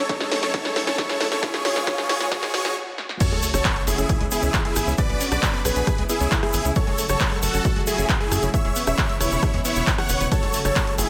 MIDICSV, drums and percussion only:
0, 0, Header, 1, 2, 480
1, 0, Start_track
1, 0, Key_signature, 3, "minor"
1, 0, Tempo, 444444
1, 1541, Time_signature, 4, 2, 24, 8
1, 11983, End_track
2, 0, Start_track
2, 0, Title_t, "Drums"
2, 101, Note_on_c, 9, 36, 110
2, 101, Note_on_c, 9, 38, 94
2, 101, Note_on_c, 9, 42, 81
2, 209, Note_off_c, 9, 36, 0
2, 209, Note_off_c, 9, 38, 0
2, 209, Note_off_c, 9, 42, 0
2, 221, Note_on_c, 9, 38, 84
2, 221, Note_on_c, 9, 42, 53
2, 329, Note_off_c, 9, 38, 0
2, 329, Note_off_c, 9, 42, 0
2, 341, Note_on_c, 9, 38, 97
2, 341, Note_on_c, 9, 46, 102
2, 449, Note_off_c, 9, 38, 0
2, 449, Note_off_c, 9, 46, 0
2, 461, Note_on_c, 9, 38, 86
2, 461, Note_on_c, 9, 42, 53
2, 569, Note_off_c, 9, 38, 0
2, 569, Note_off_c, 9, 42, 0
2, 582, Note_on_c, 9, 36, 112
2, 582, Note_on_c, 9, 38, 91
2, 582, Note_on_c, 9, 42, 79
2, 690, Note_off_c, 9, 36, 0
2, 690, Note_off_c, 9, 38, 0
2, 690, Note_off_c, 9, 42, 0
2, 702, Note_on_c, 9, 38, 83
2, 702, Note_on_c, 9, 42, 55
2, 810, Note_off_c, 9, 38, 0
2, 810, Note_off_c, 9, 42, 0
2, 822, Note_on_c, 9, 38, 93
2, 822, Note_on_c, 9, 46, 98
2, 930, Note_off_c, 9, 38, 0
2, 930, Note_off_c, 9, 46, 0
2, 942, Note_on_c, 9, 38, 90
2, 942, Note_on_c, 9, 42, 54
2, 1050, Note_off_c, 9, 38, 0
2, 1050, Note_off_c, 9, 42, 0
2, 1062, Note_on_c, 9, 36, 113
2, 1062, Note_on_c, 9, 38, 100
2, 1062, Note_on_c, 9, 42, 82
2, 1170, Note_off_c, 9, 36, 0
2, 1170, Note_off_c, 9, 38, 0
2, 1170, Note_off_c, 9, 42, 0
2, 1182, Note_on_c, 9, 38, 88
2, 1182, Note_on_c, 9, 42, 55
2, 1290, Note_off_c, 9, 38, 0
2, 1290, Note_off_c, 9, 42, 0
2, 1302, Note_on_c, 9, 38, 100
2, 1302, Note_on_c, 9, 46, 98
2, 1410, Note_off_c, 9, 38, 0
2, 1410, Note_off_c, 9, 46, 0
2, 1422, Note_on_c, 9, 38, 87
2, 1422, Note_on_c, 9, 42, 54
2, 1530, Note_off_c, 9, 38, 0
2, 1530, Note_off_c, 9, 42, 0
2, 1542, Note_on_c, 9, 36, 115
2, 1542, Note_on_c, 9, 38, 97
2, 1542, Note_on_c, 9, 42, 81
2, 1650, Note_off_c, 9, 36, 0
2, 1650, Note_off_c, 9, 38, 0
2, 1650, Note_off_c, 9, 42, 0
2, 1662, Note_on_c, 9, 38, 86
2, 1662, Note_on_c, 9, 42, 53
2, 1770, Note_off_c, 9, 38, 0
2, 1770, Note_off_c, 9, 42, 0
2, 1782, Note_on_c, 9, 38, 107
2, 1782, Note_on_c, 9, 46, 107
2, 1890, Note_off_c, 9, 38, 0
2, 1890, Note_off_c, 9, 46, 0
2, 1902, Note_on_c, 9, 38, 92
2, 1902, Note_on_c, 9, 42, 54
2, 2010, Note_off_c, 9, 38, 0
2, 2010, Note_off_c, 9, 42, 0
2, 2021, Note_on_c, 9, 36, 117
2, 2022, Note_on_c, 9, 38, 105
2, 2022, Note_on_c, 9, 42, 83
2, 2129, Note_off_c, 9, 36, 0
2, 2130, Note_off_c, 9, 38, 0
2, 2130, Note_off_c, 9, 42, 0
2, 2142, Note_on_c, 9, 38, 91
2, 2142, Note_on_c, 9, 42, 55
2, 2250, Note_off_c, 9, 38, 0
2, 2250, Note_off_c, 9, 42, 0
2, 2261, Note_on_c, 9, 38, 110
2, 2261, Note_on_c, 9, 46, 109
2, 2369, Note_off_c, 9, 38, 0
2, 2369, Note_off_c, 9, 46, 0
2, 2382, Note_on_c, 9, 38, 94
2, 2382, Note_on_c, 9, 42, 57
2, 2490, Note_off_c, 9, 38, 0
2, 2490, Note_off_c, 9, 42, 0
2, 2501, Note_on_c, 9, 36, 113
2, 2501, Note_on_c, 9, 38, 107
2, 2501, Note_on_c, 9, 42, 81
2, 2609, Note_off_c, 9, 36, 0
2, 2609, Note_off_c, 9, 38, 0
2, 2609, Note_off_c, 9, 42, 0
2, 2622, Note_on_c, 9, 38, 94
2, 2622, Note_on_c, 9, 42, 56
2, 2730, Note_off_c, 9, 38, 0
2, 2730, Note_off_c, 9, 42, 0
2, 2741, Note_on_c, 9, 38, 102
2, 2741, Note_on_c, 9, 46, 101
2, 2849, Note_off_c, 9, 38, 0
2, 2849, Note_off_c, 9, 46, 0
2, 2861, Note_on_c, 9, 38, 100
2, 2969, Note_off_c, 9, 38, 0
2, 3221, Note_on_c, 9, 38, 64
2, 3329, Note_off_c, 9, 38, 0
2, 3340, Note_on_c, 9, 38, 74
2, 3448, Note_off_c, 9, 38, 0
2, 3460, Note_on_c, 9, 42, 93
2, 3460, Note_on_c, 9, 49, 100
2, 3461, Note_on_c, 9, 36, 118
2, 3461, Note_on_c, 9, 82, 42
2, 3568, Note_off_c, 9, 42, 0
2, 3568, Note_off_c, 9, 49, 0
2, 3569, Note_off_c, 9, 36, 0
2, 3569, Note_off_c, 9, 82, 0
2, 3581, Note_on_c, 9, 42, 53
2, 3689, Note_off_c, 9, 42, 0
2, 3701, Note_on_c, 9, 46, 110
2, 3701, Note_on_c, 9, 82, 86
2, 3809, Note_off_c, 9, 46, 0
2, 3809, Note_off_c, 9, 82, 0
2, 3821, Note_on_c, 9, 37, 74
2, 3821, Note_on_c, 9, 42, 55
2, 3824, Note_on_c, 9, 82, 57
2, 3929, Note_off_c, 9, 37, 0
2, 3929, Note_off_c, 9, 42, 0
2, 3932, Note_off_c, 9, 82, 0
2, 3941, Note_on_c, 9, 36, 116
2, 3941, Note_on_c, 9, 39, 119
2, 3941, Note_on_c, 9, 42, 95
2, 3941, Note_on_c, 9, 82, 36
2, 4049, Note_off_c, 9, 36, 0
2, 4049, Note_off_c, 9, 39, 0
2, 4049, Note_off_c, 9, 42, 0
2, 4049, Note_off_c, 9, 82, 0
2, 4062, Note_on_c, 9, 42, 54
2, 4170, Note_off_c, 9, 42, 0
2, 4182, Note_on_c, 9, 46, 105
2, 4187, Note_on_c, 9, 82, 90
2, 4290, Note_off_c, 9, 46, 0
2, 4295, Note_off_c, 9, 82, 0
2, 4301, Note_on_c, 9, 42, 56
2, 4304, Note_on_c, 9, 82, 49
2, 4409, Note_off_c, 9, 42, 0
2, 4412, Note_off_c, 9, 82, 0
2, 4419, Note_on_c, 9, 82, 39
2, 4421, Note_on_c, 9, 36, 117
2, 4421, Note_on_c, 9, 42, 94
2, 4527, Note_off_c, 9, 82, 0
2, 4529, Note_off_c, 9, 36, 0
2, 4529, Note_off_c, 9, 42, 0
2, 4542, Note_on_c, 9, 42, 55
2, 4650, Note_off_c, 9, 42, 0
2, 4655, Note_on_c, 9, 82, 86
2, 4662, Note_on_c, 9, 46, 101
2, 4763, Note_off_c, 9, 82, 0
2, 4770, Note_off_c, 9, 46, 0
2, 4779, Note_on_c, 9, 82, 56
2, 4782, Note_on_c, 9, 42, 56
2, 4887, Note_off_c, 9, 82, 0
2, 4890, Note_off_c, 9, 42, 0
2, 4897, Note_on_c, 9, 82, 42
2, 4901, Note_on_c, 9, 36, 115
2, 4902, Note_on_c, 9, 39, 121
2, 4902, Note_on_c, 9, 42, 96
2, 5005, Note_off_c, 9, 82, 0
2, 5009, Note_off_c, 9, 36, 0
2, 5010, Note_off_c, 9, 39, 0
2, 5010, Note_off_c, 9, 42, 0
2, 5023, Note_on_c, 9, 42, 57
2, 5131, Note_off_c, 9, 42, 0
2, 5139, Note_on_c, 9, 82, 98
2, 5142, Note_on_c, 9, 37, 76
2, 5142, Note_on_c, 9, 46, 105
2, 5247, Note_off_c, 9, 82, 0
2, 5250, Note_off_c, 9, 37, 0
2, 5250, Note_off_c, 9, 46, 0
2, 5263, Note_on_c, 9, 42, 53
2, 5266, Note_on_c, 9, 82, 52
2, 5371, Note_off_c, 9, 42, 0
2, 5374, Note_off_c, 9, 82, 0
2, 5374, Note_on_c, 9, 82, 38
2, 5381, Note_on_c, 9, 36, 123
2, 5383, Note_on_c, 9, 42, 94
2, 5482, Note_off_c, 9, 82, 0
2, 5489, Note_off_c, 9, 36, 0
2, 5491, Note_off_c, 9, 42, 0
2, 5502, Note_on_c, 9, 42, 52
2, 5610, Note_off_c, 9, 42, 0
2, 5622, Note_on_c, 9, 46, 113
2, 5623, Note_on_c, 9, 82, 86
2, 5730, Note_off_c, 9, 46, 0
2, 5731, Note_off_c, 9, 82, 0
2, 5742, Note_on_c, 9, 37, 75
2, 5742, Note_on_c, 9, 42, 52
2, 5742, Note_on_c, 9, 82, 55
2, 5850, Note_off_c, 9, 37, 0
2, 5850, Note_off_c, 9, 42, 0
2, 5850, Note_off_c, 9, 82, 0
2, 5861, Note_on_c, 9, 36, 124
2, 5861, Note_on_c, 9, 39, 127
2, 5861, Note_on_c, 9, 42, 95
2, 5870, Note_on_c, 9, 82, 43
2, 5969, Note_off_c, 9, 36, 0
2, 5969, Note_off_c, 9, 39, 0
2, 5969, Note_off_c, 9, 42, 0
2, 5978, Note_off_c, 9, 82, 0
2, 5982, Note_on_c, 9, 42, 54
2, 6090, Note_off_c, 9, 42, 0
2, 6102, Note_on_c, 9, 37, 61
2, 6102, Note_on_c, 9, 46, 109
2, 6107, Note_on_c, 9, 82, 94
2, 6210, Note_off_c, 9, 37, 0
2, 6210, Note_off_c, 9, 46, 0
2, 6215, Note_off_c, 9, 82, 0
2, 6218, Note_on_c, 9, 82, 55
2, 6222, Note_on_c, 9, 42, 55
2, 6326, Note_off_c, 9, 82, 0
2, 6330, Note_off_c, 9, 42, 0
2, 6338, Note_on_c, 9, 82, 37
2, 6341, Note_on_c, 9, 36, 123
2, 6342, Note_on_c, 9, 37, 76
2, 6342, Note_on_c, 9, 42, 92
2, 6446, Note_off_c, 9, 82, 0
2, 6449, Note_off_c, 9, 36, 0
2, 6450, Note_off_c, 9, 37, 0
2, 6450, Note_off_c, 9, 42, 0
2, 6462, Note_on_c, 9, 42, 52
2, 6570, Note_off_c, 9, 42, 0
2, 6581, Note_on_c, 9, 82, 97
2, 6582, Note_on_c, 9, 46, 105
2, 6689, Note_off_c, 9, 82, 0
2, 6690, Note_off_c, 9, 46, 0
2, 6702, Note_on_c, 9, 42, 55
2, 6702, Note_on_c, 9, 82, 52
2, 6810, Note_off_c, 9, 42, 0
2, 6810, Note_off_c, 9, 82, 0
2, 6821, Note_on_c, 9, 36, 116
2, 6822, Note_on_c, 9, 39, 123
2, 6822, Note_on_c, 9, 42, 94
2, 6822, Note_on_c, 9, 82, 44
2, 6929, Note_off_c, 9, 36, 0
2, 6930, Note_off_c, 9, 39, 0
2, 6930, Note_off_c, 9, 42, 0
2, 6930, Note_off_c, 9, 82, 0
2, 6942, Note_on_c, 9, 37, 78
2, 6942, Note_on_c, 9, 42, 55
2, 7050, Note_off_c, 9, 37, 0
2, 7050, Note_off_c, 9, 42, 0
2, 7055, Note_on_c, 9, 82, 96
2, 7062, Note_on_c, 9, 46, 110
2, 7163, Note_off_c, 9, 82, 0
2, 7170, Note_off_c, 9, 46, 0
2, 7182, Note_on_c, 9, 42, 53
2, 7183, Note_on_c, 9, 82, 58
2, 7290, Note_off_c, 9, 42, 0
2, 7291, Note_off_c, 9, 82, 0
2, 7291, Note_on_c, 9, 82, 41
2, 7301, Note_on_c, 9, 36, 124
2, 7301, Note_on_c, 9, 42, 87
2, 7399, Note_off_c, 9, 82, 0
2, 7409, Note_off_c, 9, 36, 0
2, 7409, Note_off_c, 9, 42, 0
2, 7421, Note_on_c, 9, 42, 49
2, 7529, Note_off_c, 9, 42, 0
2, 7541, Note_on_c, 9, 82, 89
2, 7542, Note_on_c, 9, 46, 113
2, 7649, Note_off_c, 9, 82, 0
2, 7650, Note_off_c, 9, 46, 0
2, 7654, Note_on_c, 9, 82, 59
2, 7662, Note_on_c, 9, 37, 78
2, 7662, Note_on_c, 9, 42, 50
2, 7762, Note_off_c, 9, 82, 0
2, 7770, Note_off_c, 9, 37, 0
2, 7770, Note_off_c, 9, 42, 0
2, 7775, Note_on_c, 9, 82, 38
2, 7781, Note_on_c, 9, 36, 124
2, 7781, Note_on_c, 9, 39, 120
2, 7781, Note_on_c, 9, 42, 89
2, 7883, Note_off_c, 9, 82, 0
2, 7889, Note_off_c, 9, 36, 0
2, 7889, Note_off_c, 9, 39, 0
2, 7889, Note_off_c, 9, 42, 0
2, 7901, Note_on_c, 9, 42, 53
2, 8009, Note_off_c, 9, 42, 0
2, 8017, Note_on_c, 9, 82, 97
2, 8021, Note_on_c, 9, 46, 117
2, 8125, Note_off_c, 9, 82, 0
2, 8129, Note_off_c, 9, 46, 0
2, 8141, Note_on_c, 9, 42, 52
2, 8142, Note_on_c, 9, 82, 54
2, 8249, Note_off_c, 9, 42, 0
2, 8250, Note_off_c, 9, 82, 0
2, 8259, Note_on_c, 9, 82, 42
2, 8261, Note_on_c, 9, 36, 125
2, 8262, Note_on_c, 9, 42, 88
2, 8367, Note_off_c, 9, 82, 0
2, 8369, Note_off_c, 9, 36, 0
2, 8370, Note_off_c, 9, 42, 0
2, 8382, Note_on_c, 9, 42, 51
2, 8490, Note_off_c, 9, 42, 0
2, 8498, Note_on_c, 9, 82, 88
2, 8501, Note_on_c, 9, 46, 111
2, 8606, Note_off_c, 9, 82, 0
2, 8609, Note_off_c, 9, 46, 0
2, 8622, Note_on_c, 9, 42, 52
2, 8626, Note_on_c, 9, 82, 59
2, 8730, Note_off_c, 9, 42, 0
2, 8734, Note_off_c, 9, 82, 0
2, 8739, Note_on_c, 9, 82, 41
2, 8741, Note_on_c, 9, 36, 123
2, 8742, Note_on_c, 9, 39, 125
2, 8742, Note_on_c, 9, 42, 89
2, 8847, Note_off_c, 9, 82, 0
2, 8849, Note_off_c, 9, 36, 0
2, 8850, Note_off_c, 9, 39, 0
2, 8850, Note_off_c, 9, 42, 0
2, 8862, Note_on_c, 9, 42, 52
2, 8970, Note_off_c, 9, 42, 0
2, 8982, Note_on_c, 9, 37, 79
2, 8982, Note_on_c, 9, 46, 112
2, 8987, Note_on_c, 9, 82, 96
2, 9090, Note_off_c, 9, 37, 0
2, 9090, Note_off_c, 9, 46, 0
2, 9095, Note_off_c, 9, 82, 0
2, 9099, Note_on_c, 9, 82, 54
2, 9102, Note_on_c, 9, 42, 53
2, 9207, Note_off_c, 9, 82, 0
2, 9210, Note_off_c, 9, 42, 0
2, 9221, Note_on_c, 9, 36, 122
2, 9221, Note_on_c, 9, 42, 88
2, 9226, Note_on_c, 9, 82, 44
2, 9329, Note_off_c, 9, 36, 0
2, 9329, Note_off_c, 9, 42, 0
2, 9334, Note_off_c, 9, 82, 0
2, 9342, Note_on_c, 9, 42, 47
2, 9450, Note_off_c, 9, 42, 0
2, 9456, Note_on_c, 9, 82, 87
2, 9462, Note_on_c, 9, 46, 112
2, 9564, Note_off_c, 9, 82, 0
2, 9570, Note_off_c, 9, 46, 0
2, 9578, Note_on_c, 9, 82, 53
2, 9583, Note_on_c, 9, 37, 80
2, 9583, Note_on_c, 9, 42, 49
2, 9686, Note_off_c, 9, 82, 0
2, 9691, Note_off_c, 9, 37, 0
2, 9691, Note_off_c, 9, 42, 0
2, 9698, Note_on_c, 9, 82, 42
2, 9701, Note_on_c, 9, 36, 124
2, 9702, Note_on_c, 9, 39, 118
2, 9702, Note_on_c, 9, 42, 87
2, 9806, Note_off_c, 9, 82, 0
2, 9809, Note_off_c, 9, 36, 0
2, 9810, Note_off_c, 9, 39, 0
2, 9810, Note_off_c, 9, 42, 0
2, 9822, Note_on_c, 9, 42, 51
2, 9930, Note_off_c, 9, 42, 0
2, 9942, Note_on_c, 9, 37, 64
2, 9942, Note_on_c, 9, 46, 112
2, 9949, Note_on_c, 9, 82, 91
2, 10050, Note_off_c, 9, 37, 0
2, 10050, Note_off_c, 9, 46, 0
2, 10057, Note_off_c, 9, 82, 0
2, 10060, Note_on_c, 9, 82, 52
2, 10061, Note_on_c, 9, 42, 51
2, 10168, Note_off_c, 9, 82, 0
2, 10169, Note_off_c, 9, 42, 0
2, 10180, Note_on_c, 9, 82, 38
2, 10181, Note_on_c, 9, 36, 123
2, 10181, Note_on_c, 9, 37, 82
2, 10181, Note_on_c, 9, 42, 87
2, 10288, Note_off_c, 9, 82, 0
2, 10289, Note_off_c, 9, 36, 0
2, 10289, Note_off_c, 9, 37, 0
2, 10289, Note_off_c, 9, 42, 0
2, 10301, Note_on_c, 9, 42, 49
2, 10409, Note_off_c, 9, 42, 0
2, 10421, Note_on_c, 9, 46, 104
2, 10421, Note_on_c, 9, 82, 97
2, 10529, Note_off_c, 9, 46, 0
2, 10529, Note_off_c, 9, 82, 0
2, 10540, Note_on_c, 9, 82, 59
2, 10541, Note_on_c, 9, 42, 52
2, 10648, Note_off_c, 9, 82, 0
2, 10649, Note_off_c, 9, 42, 0
2, 10661, Note_on_c, 9, 36, 122
2, 10662, Note_on_c, 9, 39, 115
2, 10662, Note_on_c, 9, 42, 88
2, 10663, Note_on_c, 9, 82, 37
2, 10769, Note_off_c, 9, 36, 0
2, 10770, Note_off_c, 9, 39, 0
2, 10770, Note_off_c, 9, 42, 0
2, 10771, Note_off_c, 9, 82, 0
2, 10782, Note_on_c, 9, 37, 82
2, 10782, Note_on_c, 9, 42, 52
2, 10890, Note_off_c, 9, 37, 0
2, 10890, Note_off_c, 9, 42, 0
2, 10897, Note_on_c, 9, 82, 94
2, 10902, Note_on_c, 9, 46, 110
2, 11005, Note_off_c, 9, 82, 0
2, 11010, Note_off_c, 9, 46, 0
2, 11022, Note_on_c, 9, 42, 50
2, 11026, Note_on_c, 9, 82, 55
2, 11130, Note_off_c, 9, 42, 0
2, 11134, Note_off_c, 9, 82, 0
2, 11141, Note_on_c, 9, 36, 119
2, 11142, Note_on_c, 9, 42, 91
2, 11142, Note_on_c, 9, 51, 65
2, 11144, Note_on_c, 9, 82, 37
2, 11249, Note_off_c, 9, 36, 0
2, 11250, Note_off_c, 9, 42, 0
2, 11250, Note_off_c, 9, 51, 0
2, 11252, Note_off_c, 9, 82, 0
2, 11262, Note_on_c, 9, 42, 50
2, 11370, Note_off_c, 9, 42, 0
2, 11374, Note_on_c, 9, 82, 88
2, 11382, Note_on_c, 9, 46, 108
2, 11482, Note_off_c, 9, 82, 0
2, 11490, Note_off_c, 9, 46, 0
2, 11502, Note_on_c, 9, 37, 82
2, 11502, Note_on_c, 9, 42, 50
2, 11503, Note_on_c, 9, 82, 51
2, 11610, Note_off_c, 9, 37, 0
2, 11610, Note_off_c, 9, 42, 0
2, 11611, Note_off_c, 9, 82, 0
2, 11621, Note_on_c, 9, 36, 117
2, 11622, Note_on_c, 9, 39, 110
2, 11622, Note_on_c, 9, 42, 87
2, 11622, Note_on_c, 9, 51, 66
2, 11622, Note_on_c, 9, 82, 37
2, 11729, Note_off_c, 9, 36, 0
2, 11730, Note_off_c, 9, 39, 0
2, 11730, Note_off_c, 9, 42, 0
2, 11730, Note_off_c, 9, 51, 0
2, 11730, Note_off_c, 9, 82, 0
2, 11742, Note_on_c, 9, 42, 50
2, 11850, Note_off_c, 9, 42, 0
2, 11862, Note_on_c, 9, 46, 109
2, 11867, Note_on_c, 9, 82, 99
2, 11970, Note_off_c, 9, 46, 0
2, 11975, Note_off_c, 9, 82, 0
2, 11983, End_track
0, 0, End_of_file